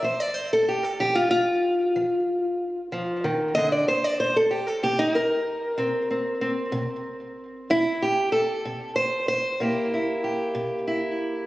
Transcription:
0.03 F3 C5
0.20 D5
0.34 C5
0.53 A4
0.69 G4
0.83 A4
1.00 F3 G4
1.15 F4
1.31 F4
1.96 F3
2.92 F3
3.24 D#3
3.55 D3 D#5
3.72 D5
3.88 C3 C5
4.04 D5
4.20 C5
4.36 A4
4.51 G4
4.67 A4
4.83 C3 G4
4.99 D#4
5.15 A#4
5.78 C3 C4
6.11 C4
6.41 C4
6.72 C3
7.70 C3 E4
8.02 G4
8.32 A4
8.65 C3
8.96 C5
9.28 C5
9.60 C3 A#3 E4 G4
9.94 E4
10.24 G4
10.55 C3
10.87 E4

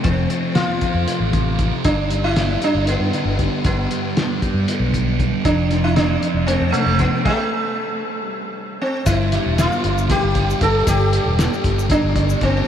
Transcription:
Already playing: C3 F3 A3
0.04 F1 F2 C4, kick, closed hi-hat
0.30 F3, closed hi-hat
0.55 C4 F4, snare, closed hi-hat
0.81 F3, kick, closed hi-hat
0.94 F2
1.07 A3, closed hi-hat
1.20 A1
1.33 C3, kick, closed hi-hat
1.59 F3, kick, closed hi-hat
1.85 G1 G2 D4, kick, closed hi-hat
2.10 G3, closed hi-hat
2.24 E4
2.36 D4, snare, closed hi-hat
2.62 G3 D4, closed hi-hat
2.75 G1
2.87 B3, closed hi-hat
3.00 G2
3.13 D3, closed hi-hat
3.25 G1
3.39 G3, kick, closed hi-hat
3.64 G1 G2 B3, kick, closed hi-hat
3.90 G3, closed hi-hat
4.16 D4, snare, closed hi-hat
4.42 G3, kick, closed hi-hat
4.54 G2
4.68 B3, closed hi-hat
4.80 B1
4.94 D3, kick, closed hi-hat
5.19 G3, kick, closed hi-hat
5.45 F1 F2 D4, kick, closed hi-hat
5.71 F3, snare, closed hi-hat
5.84 E4
5.96 C4 D4, snare, closed hi-hat
6.22 F3, closed hi-hat
6.34 F1
6.47 A3 C4, closed hi-hat
6.61 F2
6.72 C3 A3, closed hi-hat
6.86 F1
6.99 F3 B3, kick, closed hi-hat
7.25 A3, kick, crash
8.26 G3
8.82 C4
9.06 G1 G2 E4, kick, closed hi-hat, shaker
9.32 G3, snare, closed hi-hat
9.46 E1
9.58 B3 F4, snare, closed hi-hat, shaker
9.72 shaker
9.84 G1 D3, closed hi-hat
9.98 shaker
10.10 G3 G4, kick, snare, closed hi-hat, shaker
10.23 G1
10.35 D4, kick, snare, closed hi-hat
10.50 shaker
10.61 G1 B3 A4, kick, closed hi-hat
10.87 G1 G2 G4, kick, closed hi-hat, shaker
11.13 G3, closed hi-hat
11.25 E1
11.39 B3, snare, closed hi-hat, shaker
11.53 shaker
11.64 G1 D3, kick, snare, closed hi-hat
11.79 shaker
11.90 G3 D4, kick, closed hi-hat, shaker
12.03 G1
12.16 D4, kick, closed hi-hat
12.30 shaker
12.41 G1 B3 C4, kick, closed hi-hat

